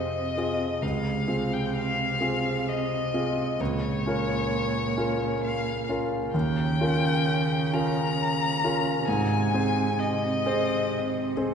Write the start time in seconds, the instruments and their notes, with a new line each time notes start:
Already playing: grand piano F2 C4 F4 G#4, cello C3, violin D#5
0.37 grand piano C4 F4 G#4
0.82 grand piano C#2, cello C3, violin F5
1.28 grand piano C4 F4 G#4
1.53 violin G5
1.77 violin F5
2.21 grand piano C4 F4 G#4
2.68 violin D#5
3.14 grand piano C4 F4 G#4
3.58 grand piano C#2, cello A#2, violin C#5
4.06 grand piano C#4 F4 A#4
4.97 grand piano C#4 F4 A#4
5.44 violin F5
5.89 grand piano C#4 F4 A#4
6.34 grand piano D#2, cello C#3, violin G5
6.81 grand piano C#4 F4 A#4
7.73 grand piano C#4 F4 A#4, violin A#5
8.64 grand piano C#4 F4 A#4
9.07 grand piano G#2, cello C3, violin G#5
9.54 grand piano C4 G#4 C5
9.99 violin D#5
10.46 grand piano C4 G#4 C5
11.37 grand piano C4 G#4 C5